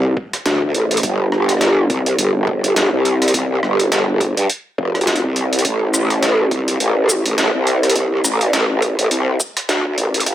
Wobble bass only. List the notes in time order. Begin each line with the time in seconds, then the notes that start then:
Already playing: C2
0.46 D2
0.74 A1
1.03 G1
1.90 C2
2.18 G1
2.64 G1
2.93 C2
3.34 C2
3.63 G1
3.92 G1
4.37 G2
4.78 F1
5.24 C2
5.65 A1
6.51 C2
6.80 A1
7.26 A1
7.55 C2
7.96 C2
8.24 A1
8.53 A1
8.99 A1
9.11 C2
9.69 D2
9.98 A1
10.26 G1